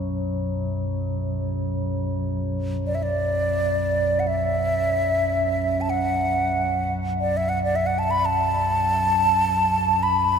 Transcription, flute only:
2.87 2.96 D5 medium
2.95 3.04 E5 soft
3.03 4.21 D5 medium
4.19 4.29 F#5 soft
4.27 5.82 E5 medium
5.81 5.91 A5 soft
5.90 6.93 F#5 medium
7.21 7.38 D5 medium
7.37 7.50 E5 medium
7.49 7.62 F#5 medium
7.64 7.77 D5 medium
7.76 7.88 E5 medium
7.86 8.00 F#5 medium
7.99 8.01 A5 medium
8.03 8.12 A5 medium
8.11 8.27 B5 medium
8.25 10.04 A5 medium
10.03 10.39 B5 medium

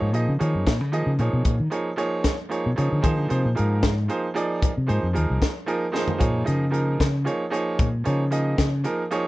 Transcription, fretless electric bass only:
0.02 0.15 G#2 medium
0.15 0.27 A#2 medium
0.28 0.40 C#3 medium
0.41 0.53 D#3 medium
0.55 0.67 F#2 medium
0.67 0.81 A#2 medium
0.81 0.94 C#3 medium
0.94 1.06 D#3 medium
1.06 1.18 C#3 medium
1.19 1.32 A#2 medium
1.33 1.46 B2 medium
1.47 1.59 A#2 medium
1.60 1.68 D#3 medium
2.66 2.78 B2 medium
2.78 2.91 C#3 medium
2.92 3.05 D3 medium
3.05 3.18 D#3 medium
3.18 3.30 D3 medium
3.31 3.44 C3 medium
3.45 3.57 A#2 medium
3.59 4.07 G#2 medium
4.77 4.89 C3 medium
4.90 5.02 G#2 medium
5.03 5.15 F2 medium
5.17 5.29 D#2 medium
5.30 5.37 C2 medium
6.22 6.47 A#2 medium
6.48 6.97 C#3 medium
7.01 7.26 C#3 medium
7.81 8.06 A#2 medium
8.07 8.55 C#3 medium
8.59 8.85 C#3 medium

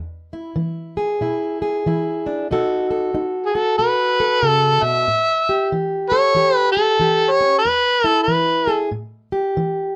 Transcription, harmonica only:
3.46 3.57 G#4 medium
3.55 3.77 A4 medium
3.78 4.49 B4 medium
4.49 4.84 A4 medium
4.83 5.71 E5 loud
6.10 6.56 C#5 loud
6.56 6.71 B4 loud
6.72 7.33 A4 medium
7.31 7.58 C#5 loud
7.59 8.07 B4 loud
8.07 8.21 A4 loud
8.23 8.71 B4 medium
8.71 8.86 A4 medium

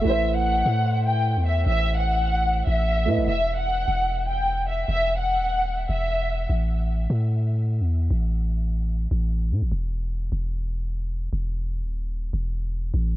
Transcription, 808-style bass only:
0.05 0.63 A1 loud
0.66 1.38 A2 loud
1.36 1.65 E2 loud
1.66 2.63 A1 loud
2.67 3.09 A1 loud
3.07 3.19 A2 loud
3.17 3.27 A1 loud
3.27 3.85 E1 loud
3.88 4.84 E1 loud
4.88 5.40 E1 loud
5.39 5.87 D#1 loud
5.89 6.47 E1 loud
6.50 7.08 A1 loud
7.10 7.82 A2 loud
7.80 8.09 E2 loud
8.11 9.07 A1 loud
9.11 9.53 A1 loud
9.52 9.63 A2 loud
9.62 9.71 A1 loud
9.72 10.30 E1 loud
10.32 11.29 E1 loud
11.33 11.85 E1 loud
11.83 12.31 D#1 medium
12.33 12.91 E1 loud
12.94 13.17 A1 loud

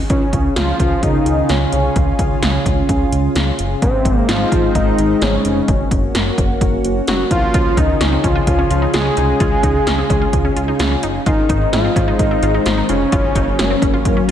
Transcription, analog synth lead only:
0.10 0.53 C#4 medium
0.57 0.78 F4 loud
0.80 1.01 F4 loud
1.03 1.51 D#4 loud
1.50 1.72 C#4 medium
1.73 2.16 C#4 medium
3.82 4.17 C4 loud
4.17 4.30 A#3 loud
4.29 4.75 F4 loud
4.75 5.23 D#4 loud
5.22 5.45 C#4 medium
5.45 5.88 C#4 medium
7.08 7.30 F#4 medium
7.32 7.79 F4 medium
7.78 8.26 D#4 loud
8.24 8.47 F4 medium
8.47 8.91 F4 loud
8.94 9.15 G#4 loud
9.17 10.99 G#4 loud
11.26 11.70 D#4 loud
11.73 12.16 F4 loud
12.19 12.63 D#4 loud
12.66 12.87 D#4 loud
12.89 14.31 C#4 medium

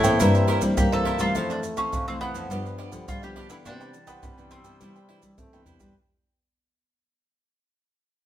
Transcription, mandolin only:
0.00 0.73 E4 medium
0.77 0.91 G4 loud
0.93 1.22 A4 medium
1.21 1.48 F4 loud
1.51 1.59 D4 medium
1.78 2.07 C#4 medium
2.08 2.20 C4 medium
2.21 3.04 B3 loud
3.08 3.23 F4 medium
3.24 3.50 G4 medium
3.50 3.55 E4 medium
3.66 4.06 D4 medium
4.07 4.48 B3 medium
4.51 5.63 C4 medium

